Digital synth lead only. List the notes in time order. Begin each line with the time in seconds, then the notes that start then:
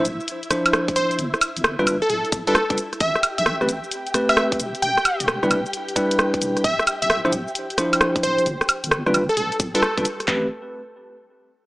0.96 C5
2.02 A4
2.10 A4
2.47 A4
3.00 E5
3.38 E5
3.46 E5
4.29 E5
4.82 G5
6.64 E5
7.02 E5
7.10 E5
8.23 C5
9.29 A4
9.37 A4
9.75 A4